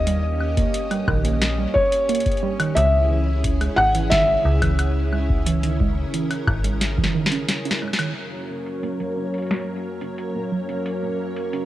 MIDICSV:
0, 0, Header, 1, 7, 480
1, 0, Start_track
1, 0, Tempo, 674157
1, 49, Time_signature, 4, 2, 24, 8
1, 8297, End_track
2, 0, Start_track
2, 0, Title_t, "Felt piano"
2, 0, Program_c, 0, 0
2, 0, Note_on_c, 0, 75, 116
2, 1239, Note_on_c, 0, 73, 91
2, 1288, Note_off_c, 0, 75, 0
2, 1959, Note_on_c, 0, 76, 84
2, 1986, Note_off_c, 0, 73, 0
2, 2416, Note_off_c, 0, 76, 0
2, 2679, Note_on_c, 0, 78, 109
2, 2907, Note_off_c, 0, 78, 0
2, 2919, Note_on_c, 0, 76, 99
2, 5296, Note_off_c, 0, 76, 0
2, 8297, End_track
3, 0, Start_track
3, 0, Title_t, "Synth texture"
3, 0, Program_c, 1, 99
3, 0, Note_on_c, 1, 61, 81
3, 0, Note_on_c, 1, 87, 84
3, 5809, Note_on_c, 1, 58, 79
3, 5809, Note_on_c, 1, 70, 78
3, 5819, Note_off_c, 1, 61, 0
3, 5819, Note_off_c, 1, 87, 0
3, 8297, Note_off_c, 1, 58, 0
3, 8297, Note_off_c, 1, 70, 0
3, 8297, End_track
4, 0, Start_track
4, 0, Title_t, "String machine"
4, 0, Program_c, 2, 50
4, 0, Note_on_c, 2, 58, 81
4, 0, Note_on_c, 2, 67, 95
4, 50, Note_on_c, 2, 61, 77
4, 1941, Note_off_c, 2, 58, 0
4, 1941, Note_off_c, 2, 67, 0
4, 1969, Note_on_c, 2, 49, 85
4, 1969, Note_on_c, 2, 64, 78
4, 1969, Note_on_c, 2, 68, 95
4, 3870, Note_off_c, 2, 68, 0
4, 3890, Note_on_c, 2, 70, 93
4, 5781, Note_off_c, 2, 49, 0
4, 5781, Note_off_c, 2, 61, 0
4, 5781, Note_off_c, 2, 64, 0
4, 5790, Note_off_c, 2, 70, 0
4, 5809, Note_on_c, 2, 42, 79
4, 5809, Note_on_c, 2, 54, 76
4, 5809, Note_on_c, 2, 61, 74
4, 5809, Note_on_c, 2, 70, 73
4, 5809, Note_on_c, 2, 73, 87
4, 8297, Note_off_c, 2, 42, 0
4, 8297, Note_off_c, 2, 54, 0
4, 8297, Note_off_c, 2, 61, 0
4, 8297, Note_off_c, 2, 70, 0
4, 8297, Note_off_c, 2, 73, 0
4, 8297, End_track
5, 0, Start_track
5, 0, Title_t, "Synth pluck"
5, 0, Program_c, 3, 84
5, 49, Note_on_c, 3, 55, 84
5, 145, Note_off_c, 3, 55, 0
5, 409, Note_on_c, 3, 58, 73
5, 505, Note_off_c, 3, 58, 0
5, 649, Note_on_c, 3, 55, 101
5, 745, Note_off_c, 3, 55, 0
5, 769, Note_on_c, 3, 51, 108
5, 865, Note_off_c, 3, 51, 0
5, 889, Note_on_c, 3, 58, 74
5, 1003, Note_off_c, 3, 58, 0
5, 1129, Note_on_c, 3, 55, 74
5, 1225, Note_off_c, 3, 55, 0
5, 1489, Note_on_c, 3, 58, 85
5, 1585, Note_off_c, 3, 58, 0
5, 1729, Note_on_c, 3, 55, 104
5, 1825, Note_off_c, 3, 55, 0
5, 1849, Note_on_c, 3, 51, 99
5, 1945, Note_off_c, 3, 51, 0
5, 1970, Note_on_c, 3, 56, 82
5, 2084, Note_off_c, 3, 56, 0
5, 2210, Note_on_c, 3, 52, 78
5, 2305, Note_off_c, 3, 52, 0
5, 2569, Note_on_c, 3, 56, 77
5, 2665, Note_off_c, 3, 56, 0
5, 2809, Note_on_c, 3, 52, 103
5, 2905, Note_off_c, 3, 52, 0
5, 2929, Note_on_c, 3, 51, 106
5, 3025, Note_off_c, 3, 51, 0
5, 3049, Note_on_c, 3, 56, 76
5, 3163, Note_off_c, 3, 56, 0
5, 3289, Note_on_c, 3, 52, 72
5, 3385, Note_off_c, 3, 52, 0
5, 3650, Note_on_c, 3, 56, 77
5, 3745, Note_off_c, 3, 56, 0
5, 3890, Note_on_c, 3, 52, 98
5, 3985, Note_off_c, 3, 52, 0
5, 4009, Note_on_c, 3, 51, 98
5, 4105, Note_off_c, 3, 51, 0
5, 4130, Note_on_c, 3, 56, 83
5, 4244, Note_off_c, 3, 56, 0
5, 4369, Note_on_c, 3, 52, 86
5, 4465, Note_off_c, 3, 52, 0
5, 4730, Note_on_c, 3, 56, 78
5, 4825, Note_off_c, 3, 56, 0
5, 4970, Note_on_c, 3, 52, 96
5, 5065, Note_off_c, 3, 52, 0
5, 5089, Note_on_c, 3, 51, 102
5, 5185, Note_off_c, 3, 51, 0
5, 5209, Note_on_c, 3, 61, 77
5, 5305, Note_off_c, 3, 61, 0
5, 5450, Note_on_c, 3, 61, 76
5, 5545, Note_off_c, 3, 61, 0
5, 5569, Note_on_c, 3, 56, 79
5, 5683, Note_off_c, 3, 56, 0
5, 5690, Note_on_c, 3, 51, 74
5, 5785, Note_off_c, 3, 51, 0
5, 6050, Note_on_c, 3, 61, 74
5, 6145, Note_off_c, 3, 61, 0
5, 6290, Note_on_c, 3, 58, 95
5, 6385, Note_off_c, 3, 58, 0
5, 6409, Note_on_c, 3, 54, 95
5, 6505, Note_off_c, 3, 54, 0
5, 6530, Note_on_c, 3, 61, 75
5, 6643, Note_off_c, 3, 61, 0
5, 6769, Note_on_c, 3, 58, 80
5, 6865, Note_off_c, 3, 58, 0
5, 7130, Note_on_c, 3, 61, 69
5, 7225, Note_off_c, 3, 61, 0
5, 7370, Note_on_c, 3, 58, 96
5, 7465, Note_off_c, 3, 58, 0
5, 7490, Note_on_c, 3, 54, 101
5, 7585, Note_off_c, 3, 54, 0
5, 7610, Note_on_c, 3, 61, 72
5, 7724, Note_off_c, 3, 61, 0
5, 7850, Note_on_c, 3, 58, 70
5, 7945, Note_off_c, 3, 58, 0
5, 8210, Note_on_c, 3, 61, 79
5, 8297, Note_off_c, 3, 61, 0
5, 8297, End_track
6, 0, Start_track
6, 0, Title_t, "FM bass"
6, 0, Program_c, 4, 39
6, 0, Note_on_c, 4, 39, 100
6, 465, Note_off_c, 4, 39, 0
6, 769, Note_on_c, 4, 34, 94
6, 1185, Note_off_c, 4, 34, 0
6, 1969, Note_on_c, 4, 37, 106
6, 2625, Note_off_c, 4, 37, 0
6, 2689, Note_on_c, 4, 32, 98
6, 3105, Note_off_c, 4, 32, 0
6, 3170, Note_on_c, 4, 37, 99
6, 4305, Note_off_c, 4, 37, 0
6, 4609, Note_on_c, 4, 32, 99
6, 5025, Note_off_c, 4, 32, 0
6, 8297, End_track
7, 0, Start_track
7, 0, Title_t, "Drums"
7, 50, Note_on_c, 9, 42, 64
7, 121, Note_off_c, 9, 42, 0
7, 290, Note_on_c, 9, 76, 35
7, 361, Note_off_c, 9, 76, 0
7, 409, Note_on_c, 9, 36, 115
7, 409, Note_on_c, 9, 42, 50
7, 481, Note_off_c, 9, 36, 0
7, 481, Note_off_c, 9, 42, 0
7, 529, Note_on_c, 9, 42, 62
7, 601, Note_off_c, 9, 42, 0
7, 650, Note_on_c, 9, 42, 35
7, 650, Note_on_c, 9, 76, 37
7, 721, Note_off_c, 9, 42, 0
7, 721, Note_off_c, 9, 76, 0
7, 769, Note_on_c, 9, 36, 105
7, 770, Note_on_c, 9, 76, 77
7, 841, Note_off_c, 9, 36, 0
7, 841, Note_off_c, 9, 76, 0
7, 890, Note_on_c, 9, 42, 51
7, 961, Note_off_c, 9, 42, 0
7, 1010, Note_on_c, 9, 38, 110
7, 1010, Note_on_c, 9, 42, 61
7, 1081, Note_off_c, 9, 38, 0
7, 1081, Note_off_c, 9, 42, 0
7, 1249, Note_on_c, 9, 36, 111
7, 1320, Note_off_c, 9, 36, 0
7, 1370, Note_on_c, 9, 42, 54
7, 1441, Note_off_c, 9, 42, 0
7, 1490, Note_on_c, 9, 42, 61
7, 1529, Note_off_c, 9, 42, 0
7, 1529, Note_on_c, 9, 42, 49
7, 1569, Note_off_c, 9, 42, 0
7, 1569, Note_on_c, 9, 42, 40
7, 1609, Note_off_c, 9, 42, 0
7, 1609, Note_on_c, 9, 36, 105
7, 1609, Note_on_c, 9, 42, 33
7, 1649, Note_off_c, 9, 42, 0
7, 1649, Note_on_c, 9, 42, 27
7, 1681, Note_off_c, 9, 36, 0
7, 1690, Note_off_c, 9, 42, 0
7, 1690, Note_on_c, 9, 42, 22
7, 1761, Note_off_c, 9, 42, 0
7, 1849, Note_on_c, 9, 42, 50
7, 1849, Note_on_c, 9, 76, 74
7, 1921, Note_off_c, 9, 42, 0
7, 1921, Note_off_c, 9, 76, 0
7, 1969, Note_on_c, 9, 42, 67
7, 2041, Note_off_c, 9, 42, 0
7, 2449, Note_on_c, 9, 36, 96
7, 2449, Note_on_c, 9, 42, 64
7, 2521, Note_off_c, 9, 36, 0
7, 2521, Note_off_c, 9, 42, 0
7, 2569, Note_on_c, 9, 42, 36
7, 2569, Note_on_c, 9, 76, 40
7, 2641, Note_off_c, 9, 42, 0
7, 2641, Note_off_c, 9, 76, 0
7, 2689, Note_on_c, 9, 76, 82
7, 2760, Note_off_c, 9, 76, 0
7, 2809, Note_on_c, 9, 42, 54
7, 2880, Note_off_c, 9, 42, 0
7, 2929, Note_on_c, 9, 36, 114
7, 2929, Note_on_c, 9, 38, 112
7, 2929, Note_on_c, 9, 42, 62
7, 3001, Note_off_c, 9, 36, 0
7, 3001, Note_off_c, 9, 38, 0
7, 3001, Note_off_c, 9, 42, 0
7, 3289, Note_on_c, 9, 36, 96
7, 3289, Note_on_c, 9, 42, 53
7, 3289, Note_on_c, 9, 76, 85
7, 3360, Note_off_c, 9, 42, 0
7, 3360, Note_off_c, 9, 76, 0
7, 3361, Note_off_c, 9, 36, 0
7, 3409, Note_on_c, 9, 42, 66
7, 3409, Note_on_c, 9, 76, 56
7, 3481, Note_off_c, 9, 42, 0
7, 3481, Note_off_c, 9, 76, 0
7, 3649, Note_on_c, 9, 76, 39
7, 3721, Note_off_c, 9, 76, 0
7, 3769, Note_on_c, 9, 36, 117
7, 3841, Note_off_c, 9, 36, 0
7, 3889, Note_on_c, 9, 42, 71
7, 3961, Note_off_c, 9, 42, 0
7, 4009, Note_on_c, 9, 42, 36
7, 4081, Note_off_c, 9, 42, 0
7, 4129, Note_on_c, 9, 36, 107
7, 4201, Note_off_c, 9, 36, 0
7, 4370, Note_on_c, 9, 42, 67
7, 4441, Note_off_c, 9, 42, 0
7, 4490, Note_on_c, 9, 42, 38
7, 4490, Note_on_c, 9, 76, 40
7, 4561, Note_off_c, 9, 42, 0
7, 4561, Note_off_c, 9, 76, 0
7, 4609, Note_on_c, 9, 36, 113
7, 4610, Note_on_c, 9, 76, 85
7, 4681, Note_off_c, 9, 36, 0
7, 4681, Note_off_c, 9, 76, 0
7, 4730, Note_on_c, 9, 42, 54
7, 4801, Note_off_c, 9, 42, 0
7, 4850, Note_on_c, 9, 38, 66
7, 4850, Note_on_c, 9, 42, 66
7, 4921, Note_off_c, 9, 38, 0
7, 4921, Note_off_c, 9, 42, 0
7, 4969, Note_on_c, 9, 36, 107
7, 5009, Note_on_c, 9, 38, 77
7, 5041, Note_off_c, 9, 36, 0
7, 5081, Note_off_c, 9, 38, 0
7, 5169, Note_on_c, 9, 38, 82
7, 5209, Note_on_c, 9, 42, 54
7, 5241, Note_off_c, 9, 38, 0
7, 5281, Note_off_c, 9, 42, 0
7, 5330, Note_on_c, 9, 38, 89
7, 5330, Note_on_c, 9, 42, 70
7, 5401, Note_off_c, 9, 38, 0
7, 5401, Note_off_c, 9, 42, 0
7, 5450, Note_on_c, 9, 42, 38
7, 5490, Note_on_c, 9, 38, 97
7, 5521, Note_off_c, 9, 42, 0
7, 5561, Note_off_c, 9, 38, 0
7, 5570, Note_on_c, 9, 76, 17
7, 5610, Note_off_c, 9, 76, 0
7, 5610, Note_on_c, 9, 76, 24
7, 5650, Note_off_c, 9, 76, 0
7, 5650, Note_on_c, 9, 38, 99
7, 5650, Note_on_c, 9, 76, 30
7, 5689, Note_off_c, 9, 76, 0
7, 5689, Note_on_c, 9, 42, 54
7, 5689, Note_on_c, 9, 76, 81
7, 5721, Note_off_c, 9, 38, 0
7, 5761, Note_off_c, 9, 42, 0
7, 5761, Note_off_c, 9, 76, 0
7, 5809, Note_on_c, 9, 42, 64
7, 5881, Note_off_c, 9, 42, 0
7, 6169, Note_on_c, 9, 42, 49
7, 6240, Note_off_c, 9, 42, 0
7, 6289, Note_on_c, 9, 42, 61
7, 6361, Note_off_c, 9, 42, 0
7, 6409, Note_on_c, 9, 42, 35
7, 6481, Note_off_c, 9, 42, 0
7, 6650, Note_on_c, 9, 42, 45
7, 6679, Note_off_c, 9, 42, 0
7, 6679, Note_on_c, 9, 42, 37
7, 6710, Note_off_c, 9, 42, 0
7, 6710, Note_on_c, 9, 42, 31
7, 6740, Note_off_c, 9, 42, 0
7, 6740, Note_on_c, 9, 42, 25
7, 6770, Note_off_c, 9, 42, 0
7, 6770, Note_on_c, 9, 38, 102
7, 6770, Note_on_c, 9, 42, 61
7, 6841, Note_off_c, 9, 38, 0
7, 6841, Note_off_c, 9, 42, 0
7, 7129, Note_on_c, 9, 42, 52
7, 7201, Note_off_c, 9, 42, 0
7, 7250, Note_on_c, 9, 42, 61
7, 7321, Note_off_c, 9, 42, 0
7, 7610, Note_on_c, 9, 42, 49
7, 7681, Note_off_c, 9, 42, 0
7, 7729, Note_on_c, 9, 42, 65
7, 7801, Note_off_c, 9, 42, 0
7, 8090, Note_on_c, 9, 42, 48
7, 8161, Note_off_c, 9, 42, 0
7, 8210, Note_on_c, 9, 42, 62
7, 8281, Note_off_c, 9, 42, 0
7, 8297, End_track
0, 0, End_of_file